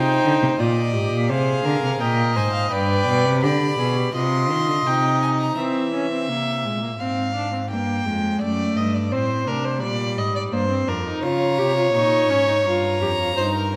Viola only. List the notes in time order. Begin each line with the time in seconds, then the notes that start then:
Already playing: D#4
0.60 F4
0.94 G4
1.30 G#4
2.00 A#4
2.36 C5
2.71 B4
3.43 G4
3.79 G#4
3.96 G4
4.14 F4
4.86 D#4
5.58 C4
5.94 C#4
6.11 C4
6.29 A#3
6.65 G#3
6.82 A#3
6.99 C4
7.35 D4
7.53 C4
7.70 A#3
8.06 G#3
8.41 A3
9.12 C4
9.47 D4
9.82 G3
10.52 A#3
10.70 C4
10.88 D4
11.05 D#4
11.23 F4
11.59 G4
11.77 F4
11.94 D#4
12.30 C#4
12.48 D#4
12.65 F4
13.02 G4
13.20 F4
13.38 D#4